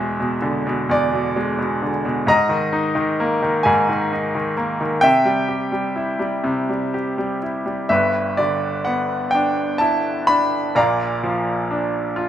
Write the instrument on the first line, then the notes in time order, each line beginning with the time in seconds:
grand piano
Already playing: E2 B2 G#3 G#4 E5
0.20 B2
0.42 D3
0.67 B2
0.89 E2 D5
1.13 B2
1.36 G#3
1.59 B2
1.82 D3
2.05 B2
2.27 G#2 D#5 A#5
2.49 D#3
2.73 D#4
2.95 D#3
3.20 A#3
3.42 D#3
3.63 G#2 G#5
3.89 D#3
4.12 D#4
4.35 D#3
4.57 A#3
4.81 D#3
5.01 C3 E5 G5
5.25 G3
5.48 G4
5.72 G3
5.96 E4
6.19 G3
6.44 C3
6.69 G3
6.94 G4
7.18 G3
7.43 E4
7.66 G3
7.89 G1 G2 B4 E5
8.37 D3 D5
8.85 B3 F#5
9.31 D4 G5
9.78 E4 A5
10.27 D4 B5
10.75 A#1 A#2 D5 F5 A#5
11.23 F3
11.71 D4
12.16 F4